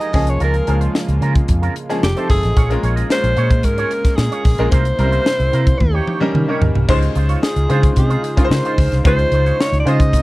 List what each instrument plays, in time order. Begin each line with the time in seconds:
Already playing: analog synth pad F3 G#3 D#4 G4 A#4, grand piano F3 G#3 A#3 D#4 G4, alto saxophone D#5
0.00 clean electric guitar D#4 G#4 A#4, closed hi-hat
0.12 fingered electric bass C#2, analog synth pad C#3 G#3 A#3 F4, grand piano F3 G#3 A#3 C#4 G#4, muted clean electric guitar stroke, kick, open hi-hat
0.27 fingered electric bass C2, alto saxophone C#5, muted clean electric guitar stroke, closed hi-hat
0.39 fingered electric bass C#2, clean electric guitar C#4 F4 A#4, closed hi-hat
0.44 alto saxophone A#4
0.54 closed hi-hat
0.67 fingered electric bass C#2, grand piano F3 G#3 A#3 C#4 G#4, clean electric guitar C#4 F4 A#4, closed hi-hat
0.81 clean electric guitar C#4 F4 C5, closed hi-hat
0.95 snare
1.07 fingered electric bass C#2, muted clean electric guitar stroke, closed hi-hat
1.21 fingered electric bass C#3, clean electric guitar C#4 F4 A#4, closed hi-hat
1.35 muted clean electric guitar stroke, kick, closed hi-hat
1.48 fingered electric bass F2, muted clean electric guitar stroke, kick, closed hi-hat
1.62 clean electric guitar C#4 F4 A#4, closed hi-hat
1.76 muted clean electric guitar stroke, closed hi-hat
1.89 grand piano F3 G#3 A#3 C#4 G#4, muted clean electric guitar stroke, snare, closed hi-hat
2.02 fingered electric bass F1, analog synth pad F3 C4 D#4 A4, alto saxophone G4, snare
2.16 grand piano F3 A3 C4 D#4 A4, clean electric guitar D#4 A4 C5, closed hi-hat
2.30 fingered electric bass G1, alto saxophone G#4, kick, snare, open hi-hat
2.43 fingered electric bass A1, muted clean electric guitar stroke, snare, closed hi-hat
2.56 fingered electric bass A#1, analog synth pad G#3 A#3 C#4, clean electric guitar F4 G#4 C#5, kick, closed hi-hat
2.70 grand piano G#3 A#3 C#4 F4 A#4, closed hi-hat
2.83 fingered electric bass A#1, clean electric guitar F4 G#4 C#5, closed hi-hat
2.96 clean electric guitar F4 G#4 D#5, closed hi-hat
3.10 grand piano G#3 A#3 C#4 F4 A#4, alto saxophone C5, snare
3.23 fingered electric bass A#1, muted clean electric guitar stroke, closed hi-hat
3.37 fingered electric bass A#2, clean electric guitar F4 G#4 C#5, closed hi-hat
3.51 muted clean electric guitar stroke, kick, closed hi-hat
3.63 fingered electric bass G#2, alto saxophone A#4, muted clean electric guitar stroke, kick, closed hi-hat
3.78 clean electric guitar F4 G#4 C#5, closed hi-hat
3.91 muted clean electric guitar stroke, closed hi-hat
4.05 muted clean electric guitar stroke, kick, snare, closed hi-hat
4.16 fingered electric bass A#2, alto saxophone G#4, muted clean electric guitar stroke, snare
4.32 clean electric guitar F4 G#4 C#5, closed hi-hat
4.44 fingered electric bass A#1, muted clean electric guitar stroke, kick, snare, open hi-hat
4.58 fingered electric bass A#1, grand piano G#3 A#3 C#4 F4 A#4, muted clean electric guitar stroke, closed hi-hat
4.71 fingered electric bass C2, analog synth pad C3 G3 E4, clean electric guitar E4 A#4 C5, alto saxophone C5, kick, closed hi-hat
4.85 closed hi-hat
4.99 fingered electric bass C2, grand piano G3 A#3 C4 C#4 A#4, clean electric guitar E4 A#4 C5, closed hi-hat
5.05 grand piano E4
5.12 clean electric guitar E4 A#4 C5, closed hi-hat
5.26 snare
5.40 fingered electric bass C2, muted clean electric guitar stroke, closed hi-hat
5.53 fingered electric bass C3, clean electric guitar E4 A#4 C5, closed hi-hat
5.66 muted clean electric guitar stroke, kick, closed hi-hat
5.79 fingered electric bass D#2, analog synth pad D#3 C#4 G4, alto saxophone G4, muted clean electric guitar stroke, kick, high tom
5.94 clean electric guitar D#4 G4 C#5
6.07 clean electric guitar D#4 G4 C#5, mid tom
6.20 grand piano G3 A#3 C#4 D#4 A#4, mid tom
6.35 fingered electric bass D#3, muted clean electric guitar stroke, mid tom
6.48 grand piano G3 A#3 C#4 D#4 A#4, clean electric guitar D#4 G4 C#5
6.61 fingered electric bass D#2, floor tom
6.75 fingered electric bass C2, muted clean electric guitar stroke, floor tom
6.88 fingered electric bass C#2, analog synth pad C#3 D#4 F4 C5, grand piano G#3 C#4 D#4 F4 C5, clean electric guitar D#4 F4 C5, kick, crash
7.02 closed hi-hat
7.15 fingered electric bass C#2, clean electric guitar D#4 F4 C5, closed hi-hat
7.29 clean electric guitar D#4 F4 C#5, closed hi-hat
7.43 alto saxophone G#4, snare
7.56 fingered electric bass C#2, muted clean electric guitar stroke, closed hi-hat
7.69 fingered electric bass C#3, grand piano G#3 C#4 D#4 F4 C5, clean electric guitar D#4 F4 C5, closed hi-hat
7.83 muted clean electric guitar stroke, kick, closed hi-hat
7.96 fingered electric bass C3, alto saxophone G#4, muted clean electric guitar stroke, kick, closed hi-hat
8.09 clean electric guitar D#4 F4 C5, closed hi-hat
8.24 muted clean electric guitar stroke, closed hi-hat
8.37 grand piano G#3 C#4 D#4 F4 A#4, muted clean electric guitar stroke, kick, closed hi-hat
8.45 grand piano C5
8.50 fingered electric bass C#3, alto saxophone C5, muted clean electric guitar stroke, snare
8.65 clean electric guitar D#4 F4 C5, closed hi-hat
8.78 fingered electric bass C#2, kick, open hi-hat
8.91 fingered electric bass C2, muted clean electric guitar stroke, snare, closed hi-hat
9.04 fingered electric bass C#2, grand piano G#3 C#4 D#4 F4 C5, clean electric guitar D#4 F4 C5, alto saxophone C5, kick, closed hi-hat
9.19 closed hi-hat
9.32 fingered electric bass C#2, clean electric guitar D#4 F4 C5, closed hi-hat
9.46 clean electric guitar D#4 F4 C#5, closed hi-hat
9.60 alto saxophone C#5, snare
9.72 fingered electric bass C#2, muted clean electric guitar stroke, closed hi-hat
9.80 alto saxophone D5
9.85 fingered electric bass C#3, grand piano G#3 C#4 D#4 F4 C5, clean electric guitar D#4 F4 C5, alto saxophone D#5, closed hi-hat
10.00 muted clean electric guitar stroke, kick, closed hi-hat
10.13 fingered electric bass C3, muted clean electric guitar stroke, kick, closed hi-hat